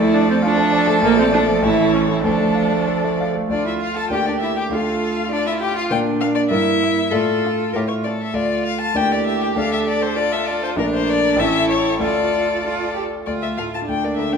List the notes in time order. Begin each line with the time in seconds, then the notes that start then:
Already playing: D2 F3 A4 D5
0.00 A3 E4
0.14 D4 D5
0.28 A3 C4
0.42 D4 F4
0.57 A3
0.73 D5
0.87 A3
1.02 A#1 A#3 D5
1.17 A3 C4
1.31 D4 D5
1.46 A3
1.62 A1 E3 E4 C#5
1.77 A3
1.93 C#4 C#5
2.08 A3 E4
2.24 D2 F3 D4 A4 D5
2.40 A3
2.55 F5
2.71 A3
2.88 A4
3.04 A3
3.20 F5
3.35 A3
3.49 D2 A3 D4 F4 D5
3.65 E4 E5
3.81 F4 F5
3.96 A4 A5
4.09 D2 A#3 D4 G4 D5 G5
4.14 G4
4.26 D4 D5
4.41 E4 E5
4.57 G4 G5
4.69 D2 A3 D4 F4 D5 F5
4.74 A4
5.31 D4 F4 D5
5.46 E4 E5
5.61 G4 G5
5.75 F4 F5
5.90 A#2 A#3 D4 D5 G5
6.21 A#3 D4 F5
6.35 D5
6.50 G2 A#3 E4 A#4 E5
6.82 A#3 E4
7.11 A2 A3 F4 A4 D5
7.44 D4 F4
7.73 A2 A3 E4 G4 A#4 C#5
7.88 C#5
8.04 C#4 A4 D5
8.22 E5
8.33 D2 A3 F4 D5
8.66 F5
8.81 A5
8.94 D2 A#3 D4 E4 G4 D5 G5
9.12 D5
9.27 E5
9.43 G5
9.56 D2 A3 D4 A4 D5 F5
9.73 E5
9.87 D5
10.02 C5
10.16 F4 A4 D5
10.32 E5
10.47 D5
10.63 C5
10.76 A#1 A3 D4 A#4 D5
10.94 C5
11.10 D5
11.36 A1 A3 C#4 E4 A4 E5
11.40 A4
11.70 C#5
11.99 D2 A3 F4 A4 D5
12.64 F4
12.95 G4
13.26 D2 F4 D5
13.42 A3 E5
13.57 A2 F4 A4 F5
13.73 F4 A5
13.87 D2 D4 G5
14.04 A#3 D5
14.17 D3 D4 A#4 E5
14.33 D4 G5